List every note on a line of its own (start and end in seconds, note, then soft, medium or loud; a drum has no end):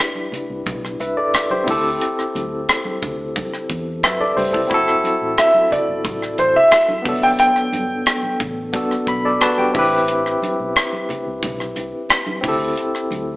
0.00 1.62 D4 medium
0.00 1.63 E4 medium
0.00 0.97 G4 medium
0.00 1.00 B4 medium
0.15 high conga soft
0.32 muted fingered electric bass stroke soft
0.32 closed hi-hat medium
0.32 muted conga soft
0.32 low conga medium
0.50 0.65 C2 medium
0.66 0.96 B1 medium
0.66 kick medium
0.66 closed hi-hat medium
0.66 muted conga soft
0.66 high conga medium
0.66 low conga medium
0.85 cross-stick soft
1.00 1.15 C2 medium
1.00 1.17 B4 soft
1.00 1.16 E5 soft
1.00 closed hi-hat medium
1.00 muted conga soft
1.17 1.49 A4 soft
1.17 1.49 D5 medium
1.34 cross-stick loud
1.34 closed hi-hat medium
1.34 muted conga soft
1.50 1.68 G4 medium
1.50 1.83 C5 medium
1.50 high conga medium
1.64 1.98 D2 loud
1.64 4.31 C4 medium
1.64 3.99 E4 medium
1.64 kick medium
1.64 muted conga soft
1.64 low conga medium
1.69 4.00 G4 medium
1.69 4.01 A4 medium
1.69 open hi-hat medium
2.01 closed hi-hat medium
2.01 muted conga soft
2.19 cross-stick soft
2.35 2.65 D2 medium
2.35 closed hi-hat medium
2.35 high conga medium
2.69 cross-stick medium
2.69 closed hi-hat medium
2.69 muted conga soft
2.85 muted fingered electric bass stroke soft
2.85 high conga medium
3.02 3.32 D2 medium
3.02 kick medium
3.02 closed hi-hat medium
3.02 muted conga soft
3.02 low conga medium
3.36 kick medium
3.36 closed hi-hat medium
3.36 high conga medium
3.36 low conga medium
3.53 cross-stick soft
3.69 4.04 E2 medium
3.69 kick medium
3.69 closed hi-hat medium
3.69 muted conga soft
4.03 4.19 F#2 medium
4.03 4.20 B4 soft
4.03 4.19 E5 medium
4.03 cross-stick loud
4.03 closed hi-hat loud
4.03 muted conga soft
4.20 4.37 A4 medium
4.20 4.36 D5 medium
4.20 high conga medium
4.37 4.52 G2 medium
4.37 4.53 G4 medium
4.37 4.53 C5 medium
4.37 open hi-hat medium
4.37 low conga medium
4.53 4.69 C2 medium
4.53 4.68 E4 soft
4.53 4.73 A4 medium
4.53 kick medium
4.67 5.01 F#1 medium
4.67 7.00 C4 medium
4.67 7.01 E4 medium
4.67 kick loud
4.67 closed hi-hat medium
4.72 7.03 F#4 medium
4.72 7.04 A4 medium
4.88 cross-stick soft
5.04 closed hi-hat medium
5.04 muted conga soft
5.04 high conga medium
5.22 5.36 A1 medium
5.38 5.70 E5 medium
5.38 cross-stick medium
5.38 closed hi-hat medium
5.38 muted conga soft
5.54 high conga medium
5.71 6.41 D5 medium
5.71 muted fingered electric bass stroke soft
5.71 closed hi-hat medium
5.71 low conga medium
5.88 6.05 G1 medium
6.04 6.35 A1 medium
6.04 kick medium
6.04 closed hi-hat medium
6.04 high conga medium
6.04 low conga medium
6.22 cross-stick soft
6.38 6.54 A1 medium
6.38 6.56 C5 medium
6.38 closed hi-hat medium
6.38 muted conga soft
6.56 7.25 E5 loud
6.71 cross-stick loud
6.71 closed hi-hat medium
6.88 high conga medium
7.02 7.36 G1 medium
7.02 8.69 B3 medium
7.02 8.70 D4 medium
7.02 kick medium
7.02 open hi-hat medium
7.02 muted conga soft
7.02 low conga medium
7.06 8.71 F#3 medium
7.06 8.72 A4 medium
7.23 7.28 G5 medium
7.39 8.36 G5 medium
7.39 closed hi-hat medium
7.39 muted conga soft
7.56 cross-stick soft
7.73 8.03 G1 medium
7.73 closed hi-hat medium
7.73 muted conga soft
7.73 high conga medium
8.06 cross-stick loud
8.06 closed hi-hat medium
8.06 muted conga soft
8.23 muted fingered electric bass stroke soft
8.23 high conga medium
8.40 8.70 A1 medium
8.40 kick medium
8.40 closed hi-hat medium
8.40 low conga medium
8.73 9.74 B3 medium
8.73 9.07 D4 medium
8.73 9.08 F#4 soft
8.73 9.09 A4 medium
8.73 kick medium
8.73 closed hi-hat medium
8.73 muted conga soft
8.73 high conga medium
8.73 low conga medium
8.91 cross-stick soft
9.07 9.37 B1 medium
9.07 9.39 B5 medium
9.07 kick medium
9.07 closed hi-hat medium
9.07 muted conga soft
9.25 9.41 A4 medium
9.25 9.41 D5 medium
9.41 9.58 F#4 medium
9.41 9.58 B4 medium
9.41 9.57 A5 medium
9.41 cross-stick loud
9.41 closed hi-hat loud
9.58 9.90 D4 medium
9.58 9.75 G4 medium
9.58 9.74 G5 medium
9.58 high conga medium
9.72 10.35 A1 loud
9.72 12.38 C4 medium
9.72 12.39 E4 medium
9.72 10.06 E5 medium
9.72 kick medium
9.72 open hi-hat medium
9.72 muted conga soft
9.72 low conga medium
9.76 12.40 G4 medium
9.76 12.41 B4 medium
10.08 closed hi-hat medium
10.08 muted conga soft
10.26 cross-stick soft
10.42 closed hi-hat medium
10.42 muted conga soft
10.42 high conga medium
10.60 10.74 B1 medium
10.76 cross-stick medium
10.76 closed hi-hat medium
10.76 muted conga soft
10.92 high conga medium
11.09 muted fingered electric bass stroke soft
11.09 closed hi-hat medium
11.09 low conga medium
11.27 11.41 C2 medium
11.42 11.72 B1 medium
11.42 kick medium
11.42 closed hi-hat medium
11.42 muted conga soft
11.42 high conga medium
11.42 low conga medium
11.60 cross-stick soft
11.76 11.92 C2 medium
11.76 closed hi-hat medium
11.76 muted conga soft
12.09 cross-stick loud
12.09 closed hi-hat loud
12.09 muted conga soft
12.27 high conga medium
12.41 12.74 D2 loud
12.41 13.37 C4 medium
12.41 13.37 E4 medium
12.41 kick loud
12.41 open hi-hat medium
12.41 muted conga soft
12.41 low conga medium
12.46 13.37 G4 medium
12.46 13.37 A4 medium
12.77 closed hi-hat medium
12.95 cross-stick soft
13.11 13.37 D2 medium
13.11 closed hi-hat medium
13.11 muted conga soft
13.11 high conga medium